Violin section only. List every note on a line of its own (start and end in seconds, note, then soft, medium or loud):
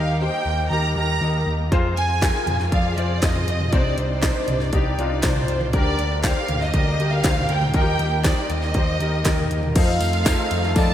0.00 0.20 F5 medium
0.22 0.68 G5 medium
0.72 0.96 A#5 medium
0.97 1.43 A#5 medium
1.97 2.68 G#5 medium
2.72 2.96 F5 medium
2.97 3.22 D5 medium
3.21 3.72 D#5 medium
3.72 3.98 D5 medium
3.98 4.73 C5 medium
5.24 5.70 C5 medium
5.74 6.20 D5 medium
6.24 6.59 F5 medium
6.62 7.12 D#5 medium
7.12 7.50 F5 medium
7.51 7.75 G5 medium
7.76 8.22 G5 medium
8.26 8.51 D5 medium
8.51 9.51 D#5 medium
9.76 10.72 F5 medium
10.77 10.94 A5 loud